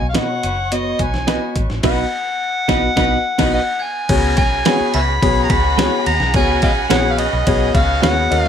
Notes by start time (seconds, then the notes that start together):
Already playing: C#5 C#6
0.02 B1
0.09 F5
0.14 B2 B3 D#4 F#4 B4 D#5 F#5, snare, closed hi-hat
0.43 F#1 D#4 F#4 B4, closed hi-hat
0.72 B3 F#4 D#5, closed hi-hat
0.99 B1 D#4 F#4 B4 G#5, kick, closed hi-hat
1.14 snare
1.27 B3 D#4 F#4 B4 D#5, snare, closed hi-hat
1.56 A1, kick, closed hi-hat
1.70 A1, snare
1.83 B1 B3 D#4 F#4 B4 D#5 F#5 B5, kick, snare, crash
2.68 B1 B3 D#4 F#4 B4 D#5 B5, kick, snare
2.96 B1 B3 D#4 F#4 B4 D#5 B5, kick, snare
3.38 B1 B3 D#4 F#4 B4 D#5 B5, kick, snare, crash
3.51 B4 D#5 F#5 F#6
3.79 G#5 G#6
4.09 C#2 B3 C#4 F#4 G#4 A#4 C#5 F#5 B5, kick, crash, ride
4.37 B1 G#5 G#6, kick, ride
4.65 G#3 B3 C#4 F#4 G#4 B4 C#5, snare, ride
4.80 muted fingered electric bass stroke
4.93 C#2 B3 C#4 F#4 E5 G#5 B5 B6, ride
5.21 B1 B3 C#4 F#4 G#4 C#5, kick, ride
5.43 A#5 A#6
5.49 C#2 B3 C#4 F#4 B5 B6, kick, ride
5.78 G#3 B3 C#4 F#4 G#4 B4 C#5, snare, ride
6.06 D#2 A#5 A#6, ride
6.20 B1, snare
6.34 C#2 B3 C#4 F#4 G#4 A#4 C#5 G#5 G#6, kick, ride
6.62 B1 D#5 F5 G#5 G#6, kick, ride
6.90 A#1 G#3 B3 C#4 F#4 G#4 B4 C#5 F#5 F#6, snare, ride
7.11 F5 F6
7.18 B3 C#4 F#4 D#5 D#6, ride
7.33 B1
7.47 B1 B3 C#4 F#4 G#4 C#5, kick, ride
7.74 C#2 B3 C#4 F#4 F5 F6, kick, ride
8.02 D#2 G#3 B3 C#4 F#4 G#4 B4 C#5 F#5 F#6, snare, ride
8.31 D#2 C#4 F#4 A#4 D#5 A#5, ride
8.40 F5